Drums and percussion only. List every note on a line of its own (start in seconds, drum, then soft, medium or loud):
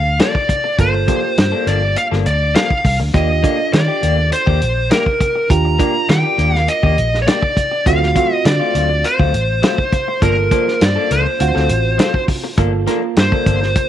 0.19 snare loud
0.19 closed hi-hat medium
0.35 kick medium
0.49 kick medium
0.49 closed hi-hat medium
0.79 kick loud
0.79 closed hi-hat medium
1.08 kick medium
1.08 closed hi-hat medium
1.38 snare loud
1.38 closed hi-hat medium
1.67 closed hi-hat medium
1.96 closed hi-hat medium
2.13 snare soft
2.26 closed hi-hat medium
2.55 snare loud
2.55 closed hi-hat medium
2.70 kick medium
2.85 kick medium
2.85 open hi-hat medium
3.14 kick loud
3.14 closed hi-hat medium
3.44 kick medium
3.44 closed hi-hat medium
3.73 snare medium
3.73 closed hi-hat medium
4.03 closed hi-hat medium
4.32 closed hi-hat medium
4.47 kick medium
4.62 closed hi-hat medium
4.91 snare loud
4.91 closed hi-hat medium
5.06 kick medium
5.21 kick medium
5.21 closed hi-hat medium
5.50 kick loud
5.50 closed hi-hat medium
5.80 kick medium
5.80 closed hi-hat medium
6.09 snare medium
6.09 closed hi-hat medium
6.39 closed hi-hat medium
6.55 snare soft
6.68 closed hi-hat medium
6.83 kick medium
6.98 closed hi-hat medium
7.14 snare soft
7.27 snare loud
7.27 closed hi-hat medium
7.43 kick medium
7.57 kick medium
7.57 closed hi-hat medium
7.86 kick medium
7.86 closed hi-hat medium
8.03 snare soft
8.16 kick medium
8.16 closed hi-hat medium
8.45 snare loud
8.45 closed hi-hat medium
8.75 closed hi-hat medium
9.04 closed hi-hat medium
9.19 kick medium
9.34 closed hi-hat medium
9.63 snare loud
9.63 closed hi-hat medium
9.78 kick medium
9.92 kick medium
9.92 closed hi-hat medium
10.22 kick loud
10.22 closed hi-hat medium
10.51 kick medium
10.51 closed hi-hat medium
10.68 snare soft
10.81 snare loud
10.81 closed hi-hat medium
11.11 closed hi-hat medium
11.40 closed hi-hat medium
11.56 snare soft
11.69 closed hi-hat medium
11.99 snare loud
11.99 closed hi-hat medium
12.14 kick medium
12.28 kick medium
12.28 open hi-hat medium
12.58 kick loud
12.58 closed hi-hat medium
12.87 snare soft
12.87 closed hi-hat medium
13.16 snare medium
13.16 closed hi-hat medium
13.32 kick medium
13.46 kick medium
13.46 closed hi-hat medium
13.63 snare soft
13.75 kick medium
13.75 closed hi-hat medium